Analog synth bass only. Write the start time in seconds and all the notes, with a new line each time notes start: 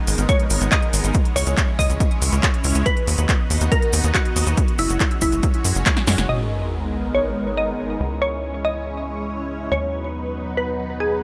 0.07 G#1
0.18 G#1
0.50 G#1
0.61 G#1
0.93 G#1
1.04 G#1
1.36 C#2
1.47 C#2
1.79 C#2
1.90 C#2
2.22 C#2
2.32 C#2
2.65 C#2
2.75 C#2
3.07 D#2
3.18 D#2
3.50 D#2
3.61 D#2
3.93 D#2
4.04 D#2
4.36 D#2
4.47 D#2
4.79 F#1
4.90 F#1
5.22 F#1
5.32 F#1
5.65 F#2
5.75 F#1
6.08 F#2
6.18 F#1
6.29 G#1
8.00 C#2
9.72 D#2